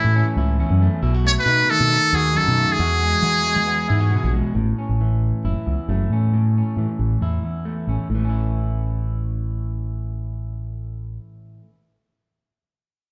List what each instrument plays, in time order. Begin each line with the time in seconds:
Already playing: clean electric guitar A2 E3 A3 C#4 E4, muted trumpet E4
0.04 fingered electric bass A2
0.15 clean electric guitar C#4
0.36 fingered electric bass C#2, clean electric guitar E4
0.59 clean electric guitar E2 C#4
0.70 fingered electric bass F#2
0.82 clean electric guitar A3
1.02 fingered electric bass B1, clean electric guitar B2 E4
1.14 clean electric guitar F#4
1.24 clean electric guitar A3, muted trumpet C#5
1.39 muted trumpet B4
1.46 fingered electric bass B2, clean electric guitar D#4
1.69 clean electric guitar D#3 A3, muted trumpet A4
1.80 fingered electric bass B2
1.92 clean electric guitar D#4
2.13 fingered electric bass D#2, clean electric guitar F#4, muted trumpet G#4
2.35 clean electric guitar F#2 D#4, muted trumpet A4
2.48 fingered electric bass B2
2.58 clean electric guitar A3
2.72 muted trumpet G#4
2.79 clean electric guitar E2 F#4, fingered electric bass E2
3.02 clean electric guitar G#3
3.22 fingered electric bass E3, clean electric guitar B3
3.46 clean electric guitar G#3
3.56 fingered electric bass E3
3.67 clean electric guitar B3
3.88 fingered electric bass G#2, clean electric guitar E4
4.00 clean electric guitar F#4
4.11 clean electric guitar B2 B3
4.23 fingered electric bass A#1
4.34 clean electric guitar G#3
4.55 fingered electric bass A1, clean electric guitar A2
4.78 clean electric guitar C#4
4.89 fingered electric bass A1
5.01 clean electric guitar E3
5.44 fingered electric bass F#1, clean electric guitar E4
5.66 fingered electric bass C#2, clean electric guitar E2
5.88 fingered electric bass F#1, clean electric guitar A3
6.10 fingered electric bass A2, clean electric guitar C#4
6.33 clean electric guitar A2
6.58 clean electric guitar C#4
6.77 fingered electric bass A2, clean electric guitar E3
6.99 fingered electric bass A1
7.21 fingered electric bass E2, clean electric guitar E4
7.43 clean electric guitar E2
7.65 clean electric guitar A3
7.87 fingered electric bass A1, clean electric guitar C#4
8.09 fingered electric bass A1, clean electric guitar A2
8.15 clean electric guitar E3
8.20 clean electric guitar A3
8.24 clean electric guitar C#4
8.29 clean electric guitar E4